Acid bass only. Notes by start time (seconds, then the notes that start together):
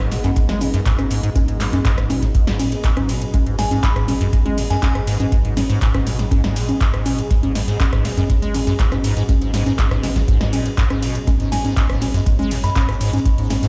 0.00 G#2
0.12 B2
0.24 F#2
0.36 G#3
0.49 G#3
0.61 G#2
0.74 F#2
0.86 G#2
0.99 G#2
1.11 G#2
1.23 G#2
1.36 G#3
1.48 G#2
1.60 G#2
1.73 F#2
1.85 G#2
1.98 G#2
2.10 B2
2.22 G#2
2.35 G#2
2.47 G#2
2.59 A#2
2.72 G#2
2.84 G#2
2.97 G#2
3.09 B2
3.22 G#2
3.34 G#3
3.46 G#2
3.59 G#2
3.71 G#2
3.83 G#2
3.96 G#2
4.08 B2
4.21 F#2
4.33 G#3
4.46 G#3
4.58 G#2
4.70 F#2
4.82 G#2
4.95 G#2
5.07 G#2
5.20 G#2
5.32 G#3
5.45 G#2
5.57 G#2
5.70 G#2
5.82 G#2
5.94 G#2
6.07 B2
6.19 G#2
6.31 G#2
6.44 G#2
6.56 A#2
6.69 G#2
6.81 G#2
6.94 G#2
7.06 B2
7.18 G#2
7.31 G#3
7.43 G#2
7.55 G#2
7.68 G#2
7.80 G#2
7.93 G#2
8.05 B2
8.17 F#2
8.30 G#3
8.42 G#3
8.55 G#2
8.67 F#2
8.79 G#2
8.92 G#2
9.04 G#2
9.17 G#2
9.29 G#3
9.42 G#2
9.54 G#2
9.66 G#2
9.78 G#2
9.91 G#2
10.03 D#3
10.16 D#3
10.28 G#2
10.41 G#2
10.53 A#2
10.66 G#2
10.78 G#2
10.90 G#2
11.03 B2
11.15 G#2
11.27 G#3
11.40 G#2
11.52 G#2
11.65 G#2
11.77 G#2
11.89 G#2
12.02 B2
12.14 F#2
12.26 G#3
12.39 G#3
12.51 G#2
12.64 F#2
12.76 G#2
12.89 G#2
13.01 G#2
13.13 G#2
13.26 G#3
13.38 G#2
13.50 G#2
13.63 G#2